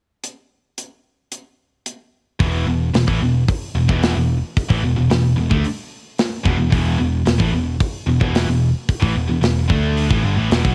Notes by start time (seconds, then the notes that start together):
0.24 closed hi-hat
0.78 closed hi-hat
1.32 closed hi-hat
1.86 closed hi-hat
2.40 E1 E2 B2 E3, kick, open hi-hat
2.66 E1 E2 B2
2.94 E1 E2 B2, snare, open hi-hat
3.07 A1 A2 E3, kick
3.21 E1 E2 B2
3.48 kick, open hi-hat
3.75 E1 E2 B2
3.88 E1 E2 B2 E3, kick
4.03 snare, open hi-hat
4.15 E1 E2 B2
4.57 kick, open hi-hat
4.69 A1 A2 E3, kick
4.83 E1 E2 B2
4.96 E1 E2 B2
5.10 E1 E2 B2, snare, open hi-hat
5.36 E1 E2 B2
5.50 D2 D3 A3, kick
5.64 open hi-hat
6.18 snare, open hi-hat
6.44 E1 E2 B2, kick
6.58 E1 E2 B2
6.70 E1 E2 B2 E3, kick, open hi-hat
6.99 E1 E2 B2
7.26 E1 E2 B2, snare, open hi-hat
7.38 A1 A2 E3, kick
7.52 E1 E2 B2
7.80 kick, open hi-hat
8.07 E1 E2 B2
8.20 E1 E2 B2 E3, kick
8.35 snare, open hi-hat
8.46 E1 E2 B2
8.89 kick, open hi-hat
9.00 A1 A2 E3, kick
9.14 E1 E2 B2
9.27 E1 E2 B2
9.41 E1 E2 B2, snare, open hi-hat
9.68 D2 D3 A3 D4, kick
9.97 open hi-hat
10.09 A1 A2 E3, kick
10.22 G1 G2 D3
10.36 A1 A2 E3
10.49 E1 E2 B2, snare, open hi-hat
10.63 B1 B2 F#3, kick